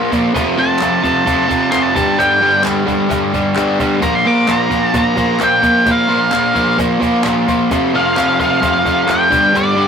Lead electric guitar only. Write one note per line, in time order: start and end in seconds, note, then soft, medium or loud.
0.59 1.02 A5 medium
1.04 1.69 A5 loud
1.71 1.82 C6 loud
1.82 1.95 A5 medium
1.96 2.17 A5 medium
2.19 2.61 G5 medium
4.03 4.15 A#5 loud
4.15 4.27 C6 medium
4.27 4.49 D6 loud
4.51 4.96 A#5 loud
4.98 5.39 A#5 loud
5.43 5.89 G5 medium
5.91 6.77 F5 medium
7.96 8.37 F5 loud
8.40 9.10 F5 loud
9.11 9.56 G5 medium
9.56 9.88 D5 loud